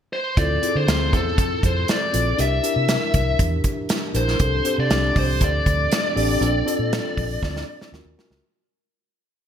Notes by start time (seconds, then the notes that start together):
0.13 C5
0.37 D2 C4 E4 F4 A4 D5, kick, closed hi-hat
0.62 C4 E4 F4 G#4, closed hi-hat
0.69 A4
0.75 D3 C5
0.88 D2, snare, closed hi-hat
1.13 E2 A4, kick, closed hi-hat
1.38 F2, kick, closed hi-hat
1.63 F2 C5, kick, closed hi-hat
1.88 D5, snare, closed hi-hat
2.12 A#1 C4 E4 F4 A4, closed hi-hat
2.37 C2 D4 E4 G4 A#4, closed hi-hat
2.41 E5
2.63 D4 E4 G4 A#4, closed hi-hat
2.76 C3
2.89 snare, closed hi-hat
3.14 C2, kick, closed hi-hat
3.39 E2, kick, closed hi-hat
3.64 kick, closed hi-hat
3.89 snare, closed hi-hat
4.14 A#1 D4 E4 G4 A#4 C5, closed hi-hat
4.28 snare
4.39 C2 C4 D4 G4 A4, kick, closed hi-hat
4.65 C4 D4 G4 A4, closed hi-hat
4.78 C3 D5
4.90 C2, snare, closed hi-hat
5.16 C2 C5, kick, open hi-hat
5.41 D2 D5, kick, closed hi-hat
5.66 D2, kick, closed hi-hat
5.92 snare, closed hi-hat
6.15 A1 C4 D4 G4 A4, open hi-hat
6.41 A#1 C4 D4 F4 A4, closed hi-hat
6.66 C4 D4 F4 A4, closed hi-hat
6.79 A#2
6.93 snare, closed hi-hat
7.17 A#1, kick, open hi-hat
7.43 D2, kick, snare
7.56 snare
7.81 snare
7.92 D#2 C#4 F4 F#4 A#4, snare
8.05 D#2
8.17 C#4 F4 F#4 A#4, snare
8.30 C#2, snare